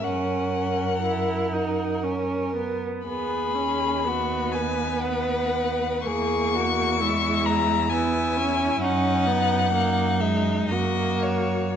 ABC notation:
X:1
M:3/4
L:1/8
Q:1/4=61
K:B
V:1 name="Violin"
f4 z2 | b3 g f2 | c'3 a g2 | f3 e d c |]
V:2 name="Violin"
A6 | G2 F B3 | G F E2 E2 | D2 D2 F2 |]
V:3 name="Viola"
C2 E D C B, | B, C B,4 | A,2 G,2 B, C | C B, A, G, A,2 |]
V:4 name="Cello" clef=bass
F,,6 | D,,6 | E,,6 | F,,4 F,,2 |]